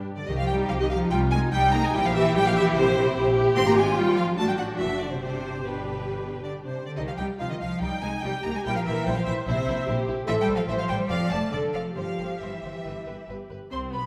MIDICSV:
0, 0, Header, 1, 6, 480
1, 0, Start_track
1, 0, Tempo, 419287
1, 310, Time_signature, 4, 2, 24, 8
1, 2697, Tempo, 406780
1, 5577, Tempo, 435098
1, 7977, Tempo, 421053
1, 9897, Tempo, 407609
1, 12777, Tempo, 435098
1, 16044, End_track
2, 0, Start_track
2, 0, Title_t, "Violin section"
2, 0, Program_c, 0, 48
2, 181, Note_on_c, 0, 74, 71
2, 298, Note_off_c, 0, 74, 0
2, 300, Note_on_c, 0, 75, 89
2, 427, Note_off_c, 0, 75, 0
2, 437, Note_on_c, 0, 77, 89
2, 536, Note_on_c, 0, 79, 92
2, 554, Note_off_c, 0, 77, 0
2, 628, Note_off_c, 0, 79, 0
2, 788, Note_on_c, 0, 77, 90
2, 837, Note_off_c, 0, 77, 0
2, 914, Note_on_c, 0, 75, 84
2, 1025, Note_on_c, 0, 77, 92
2, 1032, Note_off_c, 0, 75, 0
2, 1117, Note_off_c, 0, 77, 0
2, 1271, Note_on_c, 0, 79, 101
2, 1363, Note_off_c, 0, 79, 0
2, 1496, Note_on_c, 0, 80, 121
2, 1587, Note_off_c, 0, 80, 0
2, 1740, Note_on_c, 0, 79, 115
2, 1978, Note_off_c, 0, 79, 0
2, 1983, Note_on_c, 0, 82, 112
2, 2103, Note_off_c, 0, 82, 0
2, 2121, Note_on_c, 0, 80, 93
2, 2225, Note_on_c, 0, 79, 123
2, 2232, Note_off_c, 0, 80, 0
2, 2342, Note_off_c, 0, 79, 0
2, 2357, Note_on_c, 0, 77, 116
2, 2453, Note_on_c, 0, 76, 110
2, 2468, Note_off_c, 0, 77, 0
2, 2688, Note_off_c, 0, 76, 0
2, 2695, Note_on_c, 0, 79, 126
2, 2814, Note_off_c, 0, 79, 0
2, 2829, Note_on_c, 0, 77, 112
2, 2941, Note_on_c, 0, 76, 126
2, 2943, Note_off_c, 0, 77, 0
2, 3035, Note_off_c, 0, 76, 0
2, 3168, Note_on_c, 0, 72, 113
2, 3750, Note_off_c, 0, 72, 0
2, 4119, Note_on_c, 0, 84, 124
2, 4233, Note_off_c, 0, 84, 0
2, 4254, Note_on_c, 0, 82, 113
2, 4367, Note_on_c, 0, 80, 105
2, 4370, Note_off_c, 0, 82, 0
2, 4599, Note_on_c, 0, 79, 106
2, 4603, Note_off_c, 0, 80, 0
2, 4829, Note_on_c, 0, 77, 101
2, 4843, Note_off_c, 0, 79, 0
2, 4924, Note_off_c, 0, 77, 0
2, 5081, Note_on_c, 0, 81, 106
2, 5203, Note_off_c, 0, 81, 0
2, 5209, Note_on_c, 0, 79, 93
2, 5258, Note_off_c, 0, 79, 0
2, 5319, Note_on_c, 0, 78, 91
2, 5413, Note_off_c, 0, 78, 0
2, 5554, Note_on_c, 0, 76, 88
2, 5792, Note_on_c, 0, 74, 70
2, 5798, Note_off_c, 0, 76, 0
2, 5923, Note_off_c, 0, 74, 0
2, 5929, Note_on_c, 0, 72, 70
2, 6030, Note_off_c, 0, 72, 0
2, 6043, Note_on_c, 0, 72, 83
2, 6520, Note_off_c, 0, 72, 0
2, 6543, Note_on_c, 0, 71, 66
2, 7381, Note_off_c, 0, 71, 0
2, 7390, Note_on_c, 0, 74, 63
2, 7478, Note_off_c, 0, 74, 0
2, 7631, Note_on_c, 0, 72, 65
2, 7856, Note_on_c, 0, 74, 64
2, 7860, Note_off_c, 0, 72, 0
2, 7904, Note_off_c, 0, 74, 0
2, 7970, Note_on_c, 0, 75, 76
2, 8019, Note_off_c, 0, 75, 0
2, 8098, Note_on_c, 0, 77, 70
2, 8146, Note_off_c, 0, 77, 0
2, 8204, Note_on_c, 0, 79, 84
2, 8295, Note_off_c, 0, 79, 0
2, 8456, Note_on_c, 0, 77, 84
2, 8576, Note_off_c, 0, 77, 0
2, 8585, Note_on_c, 0, 75, 78
2, 8632, Note_off_c, 0, 75, 0
2, 8696, Note_on_c, 0, 77, 83
2, 8929, Note_on_c, 0, 79, 93
2, 8932, Note_off_c, 0, 77, 0
2, 9158, Note_on_c, 0, 80, 95
2, 9167, Note_off_c, 0, 79, 0
2, 9388, Note_on_c, 0, 79, 99
2, 9407, Note_off_c, 0, 80, 0
2, 9643, Note_off_c, 0, 79, 0
2, 9643, Note_on_c, 0, 82, 88
2, 9770, Note_off_c, 0, 82, 0
2, 9780, Note_on_c, 0, 80, 75
2, 9891, Note_on_c, 0, 79, 108
2, 9898, Note_off_c, 0, 80, 0
2, 10013, Note_off_c, 0, 79, 0
2, 10024, Note_on_c, 0, 77, 79
2, 10071, Note_off_c, 0, 77, 0
2, 10136, Note_on_c, 0, 76, 91
2, 10367, Note_on_c, 0, 79, 96
2, 10371, Note_off_c, 0, 76, 0
2, 10491, Note_off_c, 0, 79, 0
2, 10492, Note_on_c, 0, 77, 85
2, 10598, Note_on_c, 0, 76, 101
2, 10613, Note_off_c, 0, 77, 0
2, 10693, Note_off_c, 0, 76, 0
2, 10838, Note_on_c, 0, 72, 99
2, 11433, Note_off_c, 0, 72, 0
2, 11803, Note_on_c, 0, 76, 115
2, 11867, Note_off_c, 0, 76, 0
2, 11968, Note_on_c, 0, 79, 97
2, 12031, Note_off_c, 0, 79, 0
2, 12140, Note_on_c, 0, 77, 79
2, 12202, Note_off_c, 0, 77, 0
2, 12289, Note_on_c, 0, 76, 97
2, 12337, Note_off_c, 0, 76, 0
2, 12412, Note_on_c, 0, 77, 88
2, 12460, Note_off_c, 0, 77, 0
2, 12518, Note_on_c, 0, 79, 99
2, 12612, Note_off_c, 0, 79, 0
2, 12763, Note_on_c, 0, 77, 107
2, 12997, Note_off_c, 0, 77, 0
2, 12999, Note_on_c, 0, 81, 98
2, 13238, Note_off_c, 0, 81, 0
2, 13245, Note_on_c, 0, 74, 75
2, 13333, Note_off_c, 0, 74, 0
2, 13475, Note_on_c, 0, 77, 73
2, 13564, Note_off_c, 0, 77, 0
2, 13718, Note_on_c, 0, 77, 79
2, 14206, Note_off_c, 0, 77, 0
2, 14207, Note_on_c, 0, 76, 60
2, 15179, Note_off_c, 0, 76, 0
2, 15652, Note_on_c, 0, 72, 61
2, 15740, Note_off_c, 0, 72, 0
2, 15895, Note_on_c, 0, 71, 54
2, 15983, Note_off_c, 0, 71, 0
2, 16044, End_track
3, 0, Start_track
3, 0, Title_t, "Viola section"
3, 0, Program_c, 1, 48
3, 309, Note_on_c, 1, 67, 89
3, 1226, Note_off_c, 1, 67, 0
3, 1266, Note_on_c, 1, 65, 77
3, 1737, Note_off_c, 1, 65, 0
3, 1746, Note_on_c, 1, 63, 90
3, 2213, Note_off_c, 1, 63, 0
3, 2226, Note_on_c, 1, 67, 111
3, 3637, Note_off_c, 1, 67, 0
3, 3651, Note_on_c, 1, 67, 115
3, 4590, Note_off_c, 1, 67, 0
3, 4604, Note_on_c, 1, 65, 94
3, 5084, Note_on_c, 1, 66, 77
3, 5086, Note_off_c, 1, 65, 0
3, 6034, Note_off_c, 1, 66, 0
3, 6053, Note_on_c, 1, 67, 64
3, 7704, Note_off_c, 1, 67, 0
3, 7978, Note_on_c, 1, 67, 65
3, 8427, Note_off_c, 1, 67, 0
3, 8469, Note_on_c, 1, 65, 62
3, 8944, Note_off_c, 1, 65, 0
3, 8946, Note_on_c, 1, 63, 64
3, 9410, Note_off_c, 1, 63, 0
3, 9426, Note_on_c, 1, 67, 71
3, 9902, Note_off_c, 1, 67, 0
3, 9911, Note_on_c, 1, 70, 78
3, 10384, Note_off_c, 1, 70, 0
3, 10387, Note_on_c, 1, 72, 80
3, 10855, Note_on_c, 1, 76, 86
3, 10859, Note_off_c, 1, 72, 0
3, 11334, Note_off_c, 1, 76, 0
3, 11343, Note_on_c, 1, 67, 88
3, 11806, Note_on_c, 1, 69, 85
3, 11812, Note_off_c, 1, 67, 0
3, 12277, Note_off_c, 1, 69, 0
3, 12281, Note_on_c, 1, 72, 85
3, 12763, Note_off_c, 1, 72, 0
3, 12771, Note_on_c, 1, 74, 78
3, 13231, Note_off_c, 1, 74, 0
3, 13243, Note_on_c, 1, 69, 65
3, 13720, Note_off_c, 1, 69, 0
3, 13739, Note_on_c, 1, 67, 55
3, 15397, Note_off_c, 1, 67, 0
3, 15656, Note_on_c, 1, 60, 60
3, 15878, Note_off_c, 1, 60, 0
3, 15887, Note_on_c, 1, 59, 52
3, 16044, Note_off_c, 1, 59, 0
3, 16044, End_track
4, 0, Start_track
4, 0, Title_t, "Violin section"
4, 0, Program_c, 2, 48
4, 567, Note_on_c, 2, 63, 60
4, 1019, Note_off_c, 2, 63, 0
4, 1033, Note_on_c, 2, 63, 62
4, 1500, Note_off_c, 2, 63, 0
4, 1512, Note_on_c, 2, 63, 70
4, 1979, Note_off_c, 2, 63, 0
4, 1996, Note_on_c, 2, 63, 75
4, 2223, Note_off_c, 2, 63, 0
4, 2234, Note_on_c, 2, 64, 74
4, 2445, Note_off_c, 2, 64, 0
4, 2458, Note_on_c, 2, 64, 75
4, 2927, Note_off_c, 2, 64, 0
4, 2941, Note_on_c, 2, 64, 84
4, 3397, Note_off_c, 2, 64, 0
4, 3411, Note_on_c, 2, 64, 83
4, 3872, Note_off_c, 2, 64, 0
4, 3886, Note_on_c, 2, 64, 77
4, 4120, Note_off_c, 2, 64, 0
4, 4133, Note_on_c, 2, 65, 86
4, 5045, Note_off_c, 2, 65, 0
4, 5101, Note_on_c, 2, 62, 76
4, 6053, Note_off_c, 2, 62, 0
4, 6066, Note_on_c, 2, 62, 58
4, 6532, Note_off_c, 2, 62, 0
4, 6543, Note_on_c, 2, 62, 51
4, 7730, Note_off_c, 2, 62, 0
4, 7975, Note_on_c, 2, 63, 61
4, 8066, Note_off_c, 2, 63, 0
4, 8217, Note_on_c, 2, 63, 51
4, 8308, Note_off_c, 2, 63, 0
4, 8453, Note_on_c, 2, 63, 56
4, 8544, Note_off_c, 2, 63, 0
4, 8701, Note_on_c, 2, 63, 55
4, 8792, Note_off_c, 2, 63, 0
4, 8941, Note_on_c, 2, 63, 58
4, 9032, Note_off_c, 2, 63, 0
4, 9178, Note_on_c, 2, 63, 60
4, 9269, Note_off_c, 2, 63, 0
4, 9414, Note_on_c, 2, 63, 61
4, 9506, Note_off_c, 2, 63, 0
4, 9652, Note_on_c, 2, 63, 59
4, 9743, Note_off_c, 2, 63, 0
4, 9899, Note_on_c, 2, 64, 64
4, 9993, Note_off_c, 2, 64, 0
4, 10152, Note_on_c, 2, 64, 61
4, 10245, Note_off_c, 2, 64, 0
4, 10385, Note_on_c, 2, 64, 65
4, 10478, Note_off_c, 2, 64, 0
4, 10618, Note_on_c, 2, 64, 66
4, 10713, Note_off_c, 2, 64, 0
4, 10869, Note_on_c, 2, 64, 79
4, 10962, Note_off_c, 2, 64, 0
4, 11101, Note_on_c, 2, 64, 69
4, 11196, Note_off_c, 2, 64, 0
4, 11346, Note_on_c, 2, 64, 74
4, 11439, Note_off_c, 2, 64, 0
4, 11574, Note_on_c, 2, 64, 68
4, 11668, Note_off_c, 2, 64, 0
4, 11803, Note_on_c, 2, 72, 80
4, 11897, Note_off_c, 2, 72, 0
4, 12045, Note_on_c, 2, 72, 64
4, 12140, Note_off_c, 2, 72, 0
4, 12281, Note_on_c, 2, 72, 62
4, 12375, Note_off_c, 2, 72, 0
4, 12531, Note_on_c, 2, 72, 65
4, 12625, Note_off_c, 2, 72, 0
4, 12768, Note_on_c, 2, 74, 70
4, 12857, Note_off_c, 2, 74, 0
4, 13011, Note_on_c, 2, 74, 58
4, 13099, Note_off_c, 2, 74, 0
4, 13240, Note_on_c, 2, 74, 54
4, 13328, Note_off_c, 2, 74, 0
4, 13481, Note_on_c, 2, 74, 49
4, 13570, Note_off_c, 2, 74, 0
4, 13728, Note_on_c, 2, 72, 51
4, 13816, Note_off_c, 2, 72, 0
4, 13976, Note_on_c, 2, 72, 43
4, 14064, Note_off_c, 2, 72, 0
4, 14230, Note_on_c, 2, 72, 40
4, 14318, Note_off_c, 2, 72, 0
4, 14469, Note_on_c, 2, 72, 37
4, 14558, Note_off_c, 2, 72, 0
4, 14713, Note_on_c, 2, 71, 47
4, 14801, Note_off_c, 2, 71, 0
4, 14945, Note_on_c, 2, 71, 38
4, 15033, Note_off_c, 2, 71, 0
4, 15185, Note_on_c, 2, 71, 44
4, 15273, Note_off_c, 2, 71, 0
4, 15424, Note_on_c, 2, 71, 40
4, 15512, Note_off_c, 2, 71, 0
4, 15664, Note_on_c, 2, 84, 69
4, 15752, Note_off_c, 2, 84, 0
4, 15893, Note_on_c, 2, 83, 62
4, 16044, Note_off_c, 2, 83, 0
4, 16044, End_track
5, 0, Start_track
5, 0, Title_t, "Cello section"
5, 0, Program_c, 3, 48
5, 190, Note_on_c, 3, 50, 60
5, 239, Note_off_c, 3, 50, 0
5, 316, Note_on_c, 3, 51, 75
5, 364, Note_off_c, 3, 51, 0
5, 441, Note_on_c, 3, 53, 75
5, 556, Note_off_c, 3, 53, 0
5, 562, Note_on_c, 3, 55, 89
5, 800, Note_off_c, 3, 55, 0
5, 803, Note_on_c, 3, 53, 82
5, 919, Note_off_c, 3, 53, 0
5, 922, Note_on_c, 3, 51, 74
5, 969, Note_off_c, 3, 51, 0
5, 1044, Note_on_c, 3, 53, 86
5, 1272, Note_off_c, 3, 53, 0
5, 1276, Note_on_c, 3, 55, 95
5, 1368, Note_off_c, 3, 55, 0
5, 1516, Note_on_c, 3, 56, 87
5, 1608, Note_off_c, 3, 56, 0
5, 1758, Note_on_c, 3, 55, 107
5, 1987, Note_off_c, 3, 55, 0
5, 1992, Note_on_c, 3, 58, 103
5, 2106, Note_on_c, 3, 56, 81
5, 2108, Note_off_c, 3, 58, 0
5, 2224, Note_off_c, 3, 56, 0
5, 2229, Note_on_c, 3, 55, 120
5, 2276, Note_off_c, 3, 55, 0
5, 2351, Note_on_c, 3, 53, 103
5, 2397, Note_off_c, 3, 53, 0
5, 2470, Note_on_c, 3, 52, 109
5, 2697, Note_off_c, 3, 52, 0
5, 2707, Note_on_c, 3, 55, 104
5, 2823, Note_off_c, 3, 55, 0
5, 2830, Note_on_c, 3, 53, 86
5, 2941, Note_off_c, 3, 53, 0
5, 2946, Note_on_c, 3, 52, 106
5, 3174, Note_off_c, 3, 52, 0
5, 3182, Note_on_c, 3, 48, 96
5, 3769, Note_off_c, 3, 48, 0
5, 4121, Note_on_c, 3, 60, 112
5, 4170, Note_off_c, 3, 60, 0
5, 4243, Note_on_c, 3, 58, 95
5, 4362, Note_off_c, 3, 58, 0
5, 4364, Note_on_c, 3, 56, 101
5, 4602, Note_on_c, 3, 55, 95
5, 4606, Note_off_c, 3, 56, 0
5, 4840, Note_off_c, 3, 55, 0
5, 4843, Note_on_c, 3, 53, 87
5, 5084, Note_on_c, 3, 57, 90
5, 5085, Note_off_c, 3, 53, 0
5, 5133, Note_off_c, 3, 57, 0
5, 5205, Note_on_c, 3, 55, 75
5, 5322, Note_on_c, 3, 54, 71
5, 5326, Note_off_c, 3, 55, 0
5, 5417, Note_off_c, 3, 54, 0
5, 5574, Note_on_c, 3, 52, 81
5, 5663, Note_off_c, 3, 52, 0
5, 5808, Note_on_c, 3, 50, 64
5, 5927, Note_on_c, 3, 48, 60
5, 5928, Note_off_c, 3, 50, 0
5, 6033, Note_off_c, 3, 48, 0
5, 6046, Note_on_c, 3, 48, 72
5, 6522, Note_off_c, 3, 48, 0
5, 6533, Note_on_c, 3, 47, 52
5, 7359, Note_off_c, 3, 47, 0
5, 7380, Note_on_c, 3, 50, 53
5, 7469, Note_off_c, 3, 50, 0
5, 7616, Note_on_c, 3, 48, 55
5, 7853, Note_off_c, 3, 48, 0
5, 7857, Note_on_c, 3, 50, 50
5, 7973, Note_off_c, 3, 50, 0
5, 7976, Note_on_c, 3, 51, 68
5, 8098, Note_off_c, 3, 51, 0
5, 8106, Note_on_c, 3, 53, 69
5, 8221, Note_on_c, 3, 55, 75
5, 8223, Note_off_c, 3, 53, 0
5, 8312, Note_off_c, 3, 55, 0
5, 8464, Note_on_c, 3, 53, 72
5, 8512, Note_off_c, 3, 53, 0
5, 8586, Note_on_c, 3, 51, 61
5, 8633, Note_off_c, 3, 51, 0
5, 8703, Note_on_c, 3, 53, 73
5, 8936, Note_off_c, 3, 53, 0
5, 8944, Note_on_c, 3, 55, 80
5, 9179, Note_on_c, 3, 56, 74
5, 9180, Note_off_c, 3, 55, 0
5, 9270, Note_off_c, 3, 56, 0
5, 9427, Note_on_c, 3, 55, 86
5, 9518, Note_off_c, 3, 55, 0
5, 9661, Note_on_c, 3, 58, 79
5, 9777, Note_off_c, 3, 58, 0
5, 9782, Note_on_c, 3, 56, 63
5, 9829, Note_off_c, 3, 56, 0
5, 9898, Note_on_c, 3, 55, 93
5, 10017, Note_off_c, 3, 55, 0
5, 10023, Note_on_c, 3, 53, 76
5, 10141, Note_off_c, 3, 53, 0
5, 10145, Note_on_c, 3, 52, 86
5, 10380, Note_off_c, 3, 52, 0
5, 10381, Note_on_c, 3, 55, 83
5, 10498, Note_off_c, 3, 55, 0
5, 10500, Note_on_c, 3, 53, 71
5, 10547, Note_off_c, 3, 53, 0
5, 10615, Note_on_c, 3, 52, 82
5, 10709, Note_off_c, 3, 52, 0
5, 10856, Note_on_c, 3, 48, 87
5, 11442, Note_off_c, 3, 48, 0
5, 11813, Note_on_c, 3, 52, 103
5, 11875, Note_off_c, 3, 52, 0
5, 11968, Note_on_c, 3, 55, 93
5, 12124, Note_off_c, 3, 55, 0
5, 12132, Note_on_c, 3, 53, 83
5, 12290, Note_off_c, 3, 53, 0
5, 12294, Note_on_c, 3, 52, 83
5, 12410, Note_off_c, 3, 52, 0
5, 12414, Note_on_c, 3, 53, 71
5, 12530, Note_on_c, 3, 55, 85
5, 12531, Note_off_c, 3, 53, 0
5, 12776, Note_off_c, 3, 55, 0
5, 12778, Note_on_c, 3, 53, 91
5, 13008, Note_off_c, 3, 53, 0
5, 13008, Note_on_c, 3, 57, 81
5, 13240, Note_on_c, 3, 50, 73
5, 13243, Note_off_c, 3, 57, 0
5, 13481, Note_on_c, 3, 53, 66
5, 13483, Note_off_c, 3, 50, 0
5, 13715, Note_off_c, 3, 53, 0
5, 13729, Note_on_c, 3, 53, 64
5, 14212, Note_off_c, 3, 53, 0
5, 14224, Note_on_c, 3, 52, 51
5, 15188, Note_off_c, 3, 52, 0
5, 16044, End_track
6, 0, Start_track
6, 0, Title_t, "Double bass section"
6, 0, Program_c, 4, 48
6, 306, Note_on_c, 4, 36, 85
6, 738, Note_off_c, 4, 36, 0
6, 798, Note_on_c, 4, 36, 81
6, 1217, Note_off_c, 4, 36, 0
6, 1272, Note_on_c, 4, 36, 90
6, 1693, Note_off_c, 4, 36, 0
6, 1747, Note_on_c, 4, 36, 92
6, 2167, Note_off_c, 4, 36, 0
6, 2224, Note_on_c, 4, 34, 99
6, 2642, Note_off_c, 4, 34, 0
6, 2699, Note_on_c, 4, 34, 102
6, 3120, Note_off_c, 4, 34, 0
6, 3177, Note_on_c, 4, 34, 108
6, 3592, Note_off_c, 4, 34, 0
6, 3650, Note_on_c, 4, 34, 98
6, 4069, Note_off_c, 4, 34, 0
6, 4129, Note_on_c, 4, 32, 101
6, 5043, Note_off_c, 4, 32, 0
6, 5087, Note_on_c, 4, 33, 77
6, 5568, Note_off_c, 4, 33, 0
6, 5585, Note_on_c, 4, 30, 68
6, 6057, Note_on_c, 4, 31, 66
6, 6058, Note_off_c, 4, 30, 0
6, 7751, Note_off_c, 4, 31, 0
6, 7983, Note_on_c, 4, 36, 71
6, 8074, Note_off_c, 4, 36, 0
6, 8222, Note_on_c, 4, 36, 66
6, 8313, Note_off_c, 4, 36, 0
6, 8469, Note_on_c, 4, 36, 69
6, 8560, Note_off_c, 4, 36, 0
6, 8714, Note_on_c, 4, 36, 63
6, 8805, Note_off_c, 4, 36, 0
6, 8941, Note_on_c, 4, 36, 67
6, 9032, Note_off_c, 4, 36, 0
6, 9174, Note_on_c, 4, 36, 69
6, 9265, Note_off_c, 4, 36, 0
6, 9416, Note_on_c, 4, 36, 70
6, 9507, Note_off_c, 4, 36, 0
6, 9654, Note_on_c, 4, 36, 66
6, 9745, Note_off_c, 4, 36, 0
6, 9896, Note_on_c, 4, 34, 82
6, 9991, Note_off_c, 4, 34, 0
6, 10137, Note_on_c, 4, 34, 68
6, 10232, Note_off_c, 4, 34, 0
6, 10384, Note_on_c, 4, 34, 77
6, 10478, Note_off_c, 4, 34, 0
6, 10616, Note_on_c, 4, 34, 71
6, 10710, Note_off_c, 4, 34, 0
6, 10856, Note_on_c, 4, 34, 85
6, 10950, Note_off_c, 4, 34, 0
6, 11091, Note_on_c, 4, 34, 75
6, 11185, Note_off_c, 4, 34, 0
6, 11331, Note_on_c, 4, 34, 87
6, 11426, Note_off_c, 4, 34, 0
6, 11573, Note_on_c, 4, 34, 75
6, 11667, Note_off_c, 4, 34, 0
6, 11806, Note_on_c, 4, 33, 91
6, 11900, Note_off_c, 4, 33, 0
6, 12046, Note_on_c, 4, 33, 75
6, 12140, Note_off_c, 4, 33, 0
6, 12285, Note_on_c, 4, 33, 77
6, 12380, Note_off_c, 4, 33, 0
6, 12529, Note_on_c, 4, 33, 72
6, 12623, Note_off_c, 4, 33, 0
6, 12778, Note_on_c, 4, 29, 75
6, 12866, Note_off_c, 4, 29, 0
6, 13010, Note_on_c, 4, 29, 64
6, 13098, Note_off_c, 4, 29, 0
6, 13243, Note_on_c, 4, 29, 59
6, 13332, Note_off_c, 4, 29, 0
6, 13487, Note_on_c, 4, 29, 52
6, 13576, Note_off_c, 4, 29, 0
6, 13730, Note_on_c, 4, 31, 57
6, 13818, Note_off_c, 4, 31, 0
6, 13983, Note_on_c, 4, 31, 52
6, 14071, Note_off_c, 4, 31, 0
6, 14225, Note_on_c, 4, 31, 51
6, 14314, Note_off_c, 4, 31, 0
6, 14467, Note_on_c, 4, 31, 46
6, 14555, Note_off_c, 4, 31, 0
6, 14711, Note_on_c, 4, 31, 49
6, 14799, Note_off_c, 4, 31, 0
6, 14948, Note_on_c, 4, 31, 45
6, 15036, Note_off_c, 4, 31, 0
6, 15188, Note_on_c, 4, 31, 47
6, 15276, Note_off_c, 4, 31, 0
6, 15427, Note_on_c, 4, 31, 41
6, 15516, Note_off_c, 4, 31, 0
6, 15657, Note_on_c, 4, 36, 61
6, 15879, Note_off_c, 4, 36, 0
6, 15898, Note_on_c, 4, 35, 56
6, 16044, Note_off_c, 4, 35, 0
6, 16044, End_track
0, 0, End_of_file